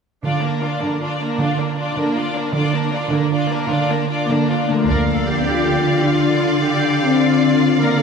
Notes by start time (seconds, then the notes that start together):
0.23 D3 D4 F4 D5
0.41 A#3 D4 A#4
0.62 D4 F4 D5
0.81 D3 A#3 D4 A#4
1.01 D4 F4 D5
1.22 A#3 D4 A#4
1.39 D3 D4 F4 D5
1.59 A#3 D4 A#4
1.78 D4 F4 D5
1.96 D3 A#3 D4 A#4
2.16 D4 F4 D5
2.35 A#3 D4 A#4
2.53 D3 D4 F4 D5
2.74 A#3 D4 A#4
2.93 D4 F4 D5
3.12 D3 A#3 D4 A#4
3.31 D4 F4 D5
3.51 A#3 D4 A#4
3.69 D3 D4 F4 D5
3.90 A#3 D4 A#4
4.09 D4 F4 D5
4.26 D3 A#3
4.30 D4 A#4
4.50 D4 F4 D5
4.68 D3 A3 A#3 D4 A#4
4.74 F3
4.79 F4
4.83 A#4
4.88 D2 D3 A#3 A#4 D5 F5
5.10 A4
5.30 G4
5.48 F4
6.04 D4 F4
6.62 D4 G4
7.03 C4
7.21 F4
7.80 A#3 A#4
7.98 A4